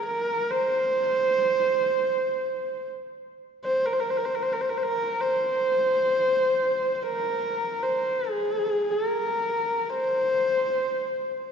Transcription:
0.07 0.52 A#4 medium
0.51 2.86 C5 medium
3.65 3.87 C5 medium
3.86 3.95 A#4 medium
3.93 4.02 C5 medium
4.00 4.12 A#4 medium
4.11 4.19 C5 medium
4.17 4.27 A#4 medium
4.25 4.37 C5 medium
4.35 4.44 A#4 medium
4.43 4.55 C5 medium
4.53 4.63 A#4 medium
4.61 4.71 C5 medium
4.70 4.79 A#4 medium
4.78 4.85 C5 medium
4.83 5.22 A#4 medium
5.21 6.95 C5 medium
6.95 7.04 C5 medium
7.03 7.85 A#4 medium
7.83 8.31 C5 medium
8.30 8.93 G#4 medium
8.91 9.91 A#4 medium
9.90 11.52 C5 medium

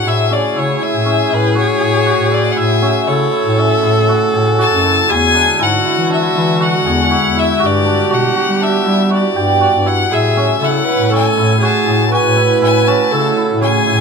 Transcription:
0.00 0.37 D4 medium
0.00 1.55 F#4 medium
0.00 3.02 G#4 loud
0.05 0.48 A2 medium
0.05 5.06 C#3 medium
0.05 5.06 A3 medium
0.05 5.05 E4 loud
0.05 0.56 E4 medium
0.05 0.34 E5 loud
0.31 1.05 C#4 medium
0.31 0.60 D5 medium
0.56 0.77 C#3 medium
0.56 0.81 E4 medium
0.56 0.85 C#5 medium
0.81 1.30 E4 medium
0.81 1.35 E5 medium
0.94 1.25 A2 medium
1.06 2.82 C#4 medium
1.30 1.73 A2 medium
1.30 2.31 E4 medium
1.30 1.58 B4 medium
1.55 2.05 F#4 medium
1.55 2.35 C#5 loud
1.81 2.13 A2 medium
1.81 4.33 G#4 medium
2.06 4.08 F#4 medium
2.19 2.51 A2 medium
2.31 2.56 E4 medium
2.31 2.53 D5 medium
2.51 2.59 F#5 medium
2.56 3.00 A2 medium
2.56 3.07 E4 medium
2.56 3.09 E5 loud
2.82 3.57 C#4 medium
3.07 3.29 C#3 medium
3.07 3.31 E4 medium
3.07 5.11 A4 loud
3.07 3.61 C#5 medium
3.31 3.82 E4 medium
3.46 3.77 A2 medium
3.58 5.40 C#4 medium
3.58 4.09 E5 medium
3.82 4.25 A2 medium
3.82 4.83 E4 medium
4.09 4.58 F#4 medium
4.33 4.65 A2 medium
4.33 6.85 G#4 medium
4.58 6.60 F#4 medium
4.58 5.12 A5 loud
4.71 5.03 F#2 medium
4.84 5.08 E4 medium
5.09 5.51 E2 medium
5.09 7.59 D3 medium
5.09 7.58 G#3 medium
5.09 5.59 E4 medium
5.09 7.59 E4 medium
5.09 5.61 G#4 loud
5.09 5.64 G#5 loud
5.34 6.10 D4 medium
5.59 5.81 G#2 medium
5.59 5.85 E4 medium
5.59 7.10 F#4 loud
5.59 6.12 F#5 loud
5.85 6.35 E4 medium
5.98 6.29 E3 medium
6.10 7.85 D4 medium
6.10 6.64 E5 loud
6.35 6.77 E3 loud
6.35 7.35 E4 medium
6.60 7.10 F#4 medium
6.60 7.41 F#5 loud
6.85 7.16 E2 medium
6.85 9.42 G#4 medium
7.10 7.62 E4 medium
7.10 7.59 F#4 medium
7.23 7.55 E2 medium
7.35 8.85 E4 medium
7.35 7.67 E5 loud
7.60 8.02 G2 medium
7.60 10.10 G3 medium
7.60 10.10 B3 medium
7.60 8.10 F#4 medium
7.60 9.86 G4 medium
7.60 10.10 G4 medium
7.66 8.15 D5 loud
7.86 8.61 D4 medium
8.10 8.32 B2 medium
8.10 8.36 F#4 medium
8.10 8.64 F#5 medium
8.36 9.10 F#4 medium
8.48 8.80 G3 medium
8.61 10.43 D4 medium
8.61 9.12 E5 medium
8.85 9.27 G3 loud
8.85 9.86 E4 medium
9.10 9.42 F#4 medium
9.10 9.89 D5 medium
9.35 9.67 G2 medium
9.35 9.67 G4 medium
9.61 11.62 F#4 medium
9.74 10.05 G2 medium
9.86 10.11 E4 medium
9.86 10.15 F#5 loud
10.10 10.53 A2 medium
10.10 14.01 A3 medium
10.10 10.62 E4 medium
10.10 14.01 E4 loud
10.10 10.57 G#4 loud
10.10 10.65 E5 loud
10.14 14.01 C#3 medium
10.37 11.12 C#4 medium
10.59 10.82 C#3 medium
10.59 10.86 E4 medium
10.59 10.86 A4 medium
10.64 11.13 F#5 loud
10.84 11.37 E4 medium
10.84 11.11 B4 loud
10.98 11.30 A2 medium
11.10 12.87 C#4 medium
11.10 11.59 A4 loud
11.15 11.66 G#5 loud
11.36 11.78 A2 loud
11.36 12.36 E4 medium
11.59 12.12 F#4 medium
11.59 12.07 G#4 loud
11.64 12.13 A5 medium
11.87 12.18 A2 medium
11.87 14.01 G#4 medium
12.11 14.01 F#4 medium
12.11 13.13 B4 loud
12.11 12.60 G#5 loud
12.24 12.56 A2 medium
12.37 12.61 E4 medium
12.61 13.03 A2 medium
12.61 13.12 E4 medium
12.61 12.89 G#5 loud
12.87 13.61 C#4 medium
12.87 13.38 A5 medium
13.12 13.33 C#3 medium
13.12 13.36 E4 medium
13.12 13.64 A4 loud
13.37 13.87 E4 medium
13.50 13.81 A2 medium
13.62 14.01 C#4 medium
13.62 14.01 G#4 loud
13.62 14.01 G#5 loud
13.87 14.01 A2 loud
13.87 14.01 E4 medium

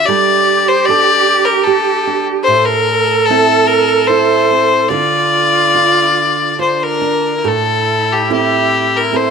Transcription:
0.00 0.88 D4 soft
0.00 0.17 F4 soft
0.06 2.50 G3 medium
0.06 2.43 G4 medium
0.06 0.90 A4 medium
0.06 0.70 D5 medium
0.68 0.87 C5 medium
0.86 2.06 D4 medium
0.86 1.67 G4 medium
0.86 1.46 D5 loud
0.90 4.40 A4 medium
1.45 1.65 A#4 medium
1.63 3.30 G4 medium
1.63 2.25 A4 medium
2.07 2.56 D4 medium
2.44 4.92 A2 medium
2.44 4.92 A4 loud
2.44 2.62 C5 medium
2.62 3.27 A#4 medium
2.62 2.67 C5 medium
3.26 4.49 C4 medium
3.26 3.68 A4 medium
3.30 4.08 E4 medium
3.67 4.09 A#4 medium
4.07 5.00 E4 medium
4.07 4.90 C5 medium
4.51 5.00 C4 soft
4.88 7.43 D3 medium
4.88 6.58 F4 medium
4.88 7.45 A4 medium
4.88 6.57 D5 medium
5.74 7.00 D4 soft
5.74 6.58 F4 soft
6.59 7.40 D4 medium
6.59 7.53 F4 soft
6.59 6.85 C5 medium
6.83 7.38 A#4 medium
7.01 7.53 D4 soft
7.38 7.50 A#4 medium
7.42 9.30 A2 medium
7.42 9.30 E4 medium
7.42 8.31 A4 medium
7.48 8.14 A4 medium
8.13 8.32 G4 medium
8.30 9.12 C4 soft
8.30 9.13 E4 medium
8.30 8.98 G4 medium
8.30 9.13 A4 medium
8.96 9.18 A#4 medium
9.12 9.30 C4 soft
9.12 9.30 E4 soft
9.12 9.30 A4 medium
9.17 9.30 C5 medium

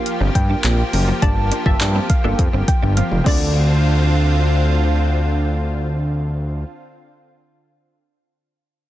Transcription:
0.00 3.22 F3 medium
0.00 0.83 A#3 medium
0.00 3.22 A#3 medium
0.00 0.83 F4 medium
0.00 0.83 G4 medium
0.00 3.22 G4 medium
0.00 0.18 F5 medium
0.00 0.83 F5 medium
0.06 closed hi-hat medium
0.20 0.30 G1 loud
0.20 0.32 C4 medium
0.35 0.54 G2 loud
0.35 0.45 G5 medium
0.35 muted clean electric guitar stroke soft
0.35 kick loud
0.35 closed hi-hat medium
0.50 0.61 D4 medium
0.64 0.83 A#1 medium
0.64 0.76 C4 medium
0.64 clap loud
0.64 closed hi-hat medium
0.93 1.12 F#1 medium
0.93 muted clean electric guitar stroke soft
0.93 open hi-hat medium
1.08 1.20 A#3 medium
1.22 1.51 G1 loud
1.22 1.57 A#3 medium
1.22 1.34 D4 medium
1.22 1.57 F4 medium
1.22 1.57 G4 medium
1.22 1.57 D5 medium
1.22 1.42 A5 loud
1.22 kick loud
1.22 closed hi-hat loud
1.37 muted clean electric guitar stroke soft
1.51 1.63 D4 medium
1.51 closed hi-hat medium
1.66 1.75 G1 medium
1.66 2.12 A#3 medium
1.66 2.12 F4 medium
1.66 2.12 G4 medium
1.66 2.12 E5 medium
1.66 1.76 A5 medium
1.66 kick loud
1.80 2.00 G2 loud
1.80 clap loud
1.80 closed hi-hat medium
1.95 2.07 C4 medium
2.10 2.51 F5 medium
2.10 muted clean electric guitar stroke soft
2.10 kick loud
2.10 closed hi-hat medium
2.24 2.34 G1 medium
2.24 3.16 A#3 medium
2.24 2.36 D4 medium
2.24 3.16 F4 medium
2.24 3.16 G4 medium
2.24 3.16 A4 medium
2.39 2.48 F2 loud
2.39 kick loud
2.39 closed hi-hat medium
2.53 2.63 G1 loud
2.53 2.65 C4 medium
2.68 2.78 G5 medium
2.68 muted clean electric guitar stroke soft
2.68 kick loud
2.68 closed hi-hat medium
2.82 3.02 G1 medium
2.82 2.94 D4 medium
2.97 3.09 C4 medium
2.97 3.07 F5 medium
2.97 closed hi-hat medium
2.97 high tom medium
3.12 3.21 F1 medium
3.12 mid tom medium
3.24 6.64 D2 loud
3.24 6.64 D3 medium
3.24 3.61 A3 medium
3.24 7.33 C4 medium
3.24 6.64 C4 medium
3.24 6.64 F4 medium
3.24 7.34 F4 medium
3.24 5.26 D5 medium
3.24 7.35 D5 medium
3.24 kick loud
3.24 crash medium

